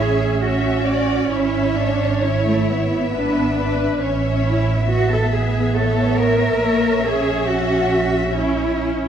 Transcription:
0, 0, Header, 1, 6, 480
1, 0, Start_track
1, 0, Key_signature, 3, "major"
1, 0, Tempo, 899550
1, 709, Time_signature, 3, 2, 24, 8
1, 1680, Tempo, 860832
1, 4987, End_track
2, 0, Start_track
2, 0, Title_t, "Violin section"
2, 0, Program_c, 0, 48
2, 0, Note_on_c, 0, 73, 59
2, 235, Note_off_c, 0, 73, 0
2, 241, Note_on_c, 0, 73, 54
2, 702, Note_off_c, 0, 73, 0
2, 715, Note_on_c, 0, 76, 54
2, 1189, Note_off_c, 0, 76, 0
2, 1195, Note_on_c, 0, 76, 55
2, 2148, Note_off_c, 0, 76, 0
2, 2170, Note_on_c, 0, 76, 51
2, 3113, Note_off_c, 0, 76, 0
2, 3132, Note_on_c, 0, 73, 61
2, 3609, Note_off_c, 0, 73, 0
2, 3615, Note_on_c, 0, 73, 59
2, 4078, Note_off_c, 0, 73, 0
2, 4093, Note_on_c, 0, 78, 54
2, 4323, Note_off_c, 0, 78, 0
2, 4330, Note_on_c, 0, 76, 61
2, 4562, Note_off_c, 0, 76, 0
2, 4562, Note_on_c, 0, 73, 50
2, 4987, Note_off_c, 0, 73, 0
2, 4987, End_track
3, 0, Start_track
3, 0, Title_t, "Violin section"
3, 0, Program_c, 1, 48
3, 0, Note_on_c, 1, 76, 54
3, 227, Note_off_c, 1, 76, 0
3, 234, Note_on_c, 1, 76, 64
3, 464, Note_off_c, 1, 76, 0
3, 465, Note_on_c, 1, 74, 70
3, 704, Note_on_c, 1, 73, 64
3, 707, Note_off_c, 1, 74, 0
3, 1675, Note_on_c, 1, 71, 60
3, 1677, Note_off_c, 1, 73, 0
3, 1916, Note_off_c, 1, 71, 0
3, 1923, Note_on_c, 1, 71, 66
3, 2160, Note_off_c, 1, 71, 0
3, 2160, Note_on_c, 1, 73, 60
3, 2642, Note_off_c, 1, 73, 0
3, 2645, Note_on_c, 1, 76, 55
3, 4987, Note_off_c, 1, 76, 0
3, 4987, End_track
4, 0, Start_track
4, 0, Title_t, "Cello section"
4, 0, Program_c, 2, 48
4, 4, Note_on_c, 2, 68, 81
4, 237, Note_on_c, 2, 66, 67
4, 238, Note_off_c, 2, 68, 0
4, 710, Note_off_c, 2, 66, 0
4, 711, Note_on_c, 2, 64, 73
4, 947, Note_off_c, 2, 64, 0
4, 949, Note_on_c, 2, 62, 78
4, 1192, Note_off_c, 2, 62, 0
4, 1197, Note_on_c, 2, 61, 79
4, 1317, Note_off_c, 2, 61, 0
4, 1324, Note_on_c, 2, 57, 68
4, 1440, Note_off_c, 2, 57, 0
4, 1441, Note_on_c, 2, 59, 62
4, 2169, Note_off_c, 2, 59, 0
4, 2406, Note_on_c, 2, 64, 70
4, 2629, Note_off_c, 2, 64, 0
4, 2649, Note_on_c, 2, 66, 90
4, 2766, Note_off_c, 2, 66, 0
4, 2775, Note_on_c, 2, 69, 80
4, 2891, Note_on_c, 2, 68, 67
4, 2892, Note_off_c, 2, 69, 0
4, 3132, Note_off_c, 2, 68, 0
4, 3134, Note_on_c, 2, 69, 75
4, 3373, Note_off_c, 2, 69, 0
4, 3376, Note_on_c, 2, 70, 76
4, 3852, Note_on_c, 2, 68, 81
4, 3853, Note_off_c, 2, 70, 0
4, 4086, Note_off_c, 2, 68, 0
4, 4090, Note_on_c, 2, 66, 76
4, 4559, Note_off_c, 2, 66, 0
4, 4560, Note_on_c, 2, 64, 71
4, 4987, Note_off_c, 2, 64, 0
4, 4987, End_track
5, 0, Start_track
5, 0, Title_t, "Viola section"
5, 0, Program_c, 3, 48
5, 0, Note_on_c, 3, 61, 64
5, 1193, Note_on_c, 3, 64, 57
5, 1194, Note_off_c, 3, 61, 0
5, 1676, Note_on_c, 3, 62, 60
5, 1679, Note_off_c, 3, 64, 0
5, 2160, Note_on_c, 3, 61, 56
5, 2165, Note_off_c, 3, 62, 0
5, 2642, Note_off_c, 3, 61, 0
5, 2647, Note_on_c, 3, 59, 58
5, 3592, Note_off_c, 3, 59, 0
5, 3610, Note_on_c, 3, 58, 58
5, 3845, Note_off_c, 3, 58, 0
5, 3848, Note_on_c, 3, 61, 61
5, 4549, Note_off_c, 3, 61, 0
5, 4556, Note_on_c, 3, 61, 66
5, 4793, Note_off_c, 3, 61, 0
5, 4799, Note_on_c, 3, 61, 55
5, 4987, Note_off_c, 3, 61, 0
5, 4987, End_track
6, 0, Start_track
6, 0, Title_t, "Double bass section"
6, 0, Program_c, 4, 48
6, 0, Note_on_c, 4, 33, 58
6, 690, Note_off_c, 4, 33, 0
6, 714, Note_on_c, 4, 32, 61
6, 2147, Note_off_c, 4, 32, 0
6, 2168, Note_on_c, 4, 33, 58
6, 3589, Note_off_c, 4, 33, 0
6, 3610, Note_on_c, 4, 34, 58
6, 4987, Note_off_c, 4, 34, 0
6, 4987, End_track
0, 0, End_of_file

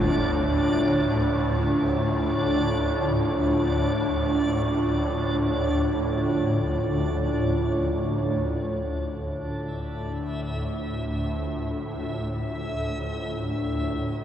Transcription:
0, 0, Header, 1, 4, 480
1, 0, Start_track
1, 0, Key_signature, -1, "minor"
1, 0, Tempo, 500000
1, 13674, End_track
2, 0, Start_track
2, 0, Title_t, "Synth texture"
2, 0, Program_c, 0, 99
2, 0, Note_on_c, 0, 62, 75
2, 8561, Note_on_c, 0, 76, 73
2, 8567, Note_off_c, 0, 62, 0
2, 13674, Note_off_c, 0, 76, 0
2, 13674, End_track
3, 0, Start_track
3, 0, Title_t, "Ambient pad"
3, 0, Program_c, 1, 92
3, 0, Note_on_c, 1, 62, 66
3, 0, Note_on_c, 1, 65, 65
3, 0, Note_on_c, 1, 73, 76
3, 8546, Note_off_c, 1, 62, 0
3, 8557, Note_on_c, 1, 62, 74
3, 8564, Note_off_c, 1, 65, 0
3, 8576, Note_off_c, 1, 73, 0
3, 9828, Note_on_c, 1, 65, 59
3, 11541, Note_on_c, 1, 73, 73
3, 13674, Note_off_c, 1, 62, 0
3, 13674, Note_off_c, 1, 65, 0
3, 13674, Note_off_c, 1, 73, 0
3, 13674, End_track
4, 0, Start_track
4, 0, Title_t, "Synth drone"
4, 0, Program_c, 2, 95
4, 0, Note_on_c, 2, 38, 76
4, 0, Note_on_c, 2, 45, 75
4, 8558, Note_off_c, 2, 38, 0
4, 8558, Note_off_c, 2, 45, 0
4, 8569, Note_on_c, 2, 38, 70
4, 8569, Note_on_c, 2, 45, 73
4, 13674, Note_off_c, 2, 38, 0
4, 13674, Note_off_c, 2, 45, 0
4, 13674, End_track
0, 0, End_of_file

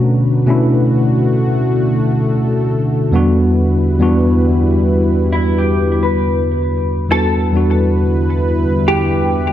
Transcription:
0, 0, Header, 1, 5, 480
1, 0, Start_track
1, 0, Tempo, 882353
1, 24, Time_signature, 4, 2, 24, 8
1, 5183, End_track
2, 0, Start_track
2, 0, Title_t, "Hollow-body jazz guitar"
2, 0, Program_c, 0, 26
2, 3871, Note_on_c, 0, 69, 98
2, 4805, Note_off_c, 0, 69, 0
2, 4830, Note_on_c, 0, 67, 86
2, 5183, Note_off_c, 0, 67, 0
2, 5183, End_track
3, 0, Start_track
3, 0, Title_t, "Clean electric guitar"
3, 0, Program_c, 1, 27
3, 2897, Note_on_c, 1, 64, 73
3, 3039, Note_on_c, 1, 67, 84
3, 3040, Note_off_c, 1, 64, 0
3, 3273, Note_off_c, 1, 67, 0
3, 3280, Note_on_c, 1, 71, 71
3, 3836, Note_off_c, 1, 71, 0
3, 5183, End_track
4, 0, Start_track
4, 0, Title_t, "Analog synth pad"
4, 0, Program_c, 2, 89
4, 0, Note_on_c, 2, 50, 79
4, 0, Note_on_c, 2, 57, 75
4, 0, Note_on_c, 2, 66, 82
4, 0, Note_on_c, 2, 71, 93
4, 733, Note_off_c, 2, 71, 0
4, 743, Note_on_c, 2, 69, 99
4, 1683, Note_off_c, 2, 57, 0
4, 1683, Note_off_c, 2, 66, 0
4, 1694, Note_off_c, 2, 69, 0
4, 1704, Note_on_c, 2, 55, 81
4, 1704, Note_on_c, 2, 64, 79
4, 1704, Note_on_c, 2, 71, 101
4, 3842, Note_off_c, 2, 55, 0
4, 3842, Note_off_c, 2, 64, 0
4, 3842, Note_off_c, 2, 71, 0
4, 3843, Note_off_c, 2, 50, 0
4, 3861, Note_on_c, 2, 50, 76
4, 3862, Note_on_c, 2, 71, 88
4, 3864, Note_on_c, 2, 55, 76
4, 3865, Note_on_c, 2, 64, 75
4, 5183, Note_off_c, 2, 50, 0
4, 5183, Note_off_c, 2, 55, 0
4, 5183, Note_off_c, 2, 64, 0
4, 5183, Note_off_c, 2, 71, 0
4, 5183, End_track
5, 0, Start_track
5, 0, Title_t, "Tine electric piano"
5, 0, Program_c, 3, 4
5, 0, Control_c, 3, 64, 127
5, 0, Note_on_c, 3, 47, 97
5, 0, Note_on_c, 3, 57, 84
5, 0, Note_on_c, 3, 61, 86
5, 0, Note_on_c, 3, 62, 88
5, 0, Note_on_c, 3, 66, 97
5, 192, Note_off_c, 3, 47, 0
5, 195, Note_off_c, 3, 57, 0
5, 198, Note_off_c, 3, 61, 0
5, 201, Note_off_c, 3, 62, 0
5, 203, Note_off_c, 3, 66, 0
5, 252, Note_on_c, 3, 47, 86
5, 255, Note_on_c, 3, 57, 78
5, 260, Note_on_c, 3, 61, 78
5, 266, Note_on_c, 3, 62, 73
5, 272, Note_on_c, 3, 64, 100
5, 964, Note_off_c, 3, 47, 0
5, 966, Note_off_c, 3, 57, 0
5, 968, Note_off_c, 3, 61, 0
5, 971, Note_off_c, 3, 62, 0
5, 974, Note_off_c, 3, 64, 0
5, 1696, Note_on_c, 3, 40, 89
5, 1702, Note_on_c, 3, 55, 85
5, 1707, Note_on_c, 3, 59, 88
5, 1710, Control_c, 3, 64, 0
5, 1712, Note_on_c, 3, 62, 89
5, 1718, Note_on_c, 3, 66, 105
5, 1818, Control_c, 3, 64, 127
5, 2106, Note_off_c, 3, 40, 0
5, 2109, Note_off_c, 3, 55, 0
5, 2111, Note_off_c, 3, 59, 0
5, 2114, Note_off_c, 3, 62, 0
5, 2117, Note_off_c, 3, 66, 0
5, 2169, Note_on_c, 3, 40, 85
5, 2176, Note_on_c, 3, 55, 81
5, 2180, Note_on_c, 3, 59, 76
5, 2187, Note_on_c, 3, 62, 82
5, 2191, Note_on_c, 3, 66, 98
5, 2883, Note_off_c, 3, 40, 0
5, 2886, Note_off_c, 3, 55, 0
5, 2888, Note_off_c, 3, 59, 0
5, 2892, Note_off_c, 3, 62, 0
5, 2894, Note_off_c, 3, 66, 0
5, 3854, Note_on_c, 3, 40, 62
5, 3859, Note_on_c, 3, 55, 60
5, 3864, Note_on_c, 3, 59, 63
5, 3869, Note_on_c, 3, 62, 63
5, 3870, Control_c, 3, 64, 0
5, 3874, Note_on_c, 3, 66, 70
5, 3975, Control_c, 3, 64, 127
5, 4049, Note_off_c, 3, 40, 0
5, 4052, Note_off_c, 3, 55, 0
5, 4054, Note_off_c, 3, 59, 0
5, 4057, Note_off_c, 3, 62, 0
5, 4059, Note_off_c, 3, 66, 0
5, 4094, Note_on_c, 3, 40, 71
5, 4098, Note_on_c, 3, 55, 65
5, 4105, Note_on_c, 3, 59, 62
5, 4111, Note_on_c, 3, 62, 70
5, 4116, Note_on_c, 3, 66, 81
5, 4805, Note_off_c, 3, 40, 0
5, 4807, Note_off_c, 3, 55, 0
5, 4811, Note_off_c, 3, 59, 0
5, 4813, Note_off_c, 3, 62, 0
5, 4816, Note_off_c, 3, 66, 0
5, 5183, End_track
0, 0, End_of_file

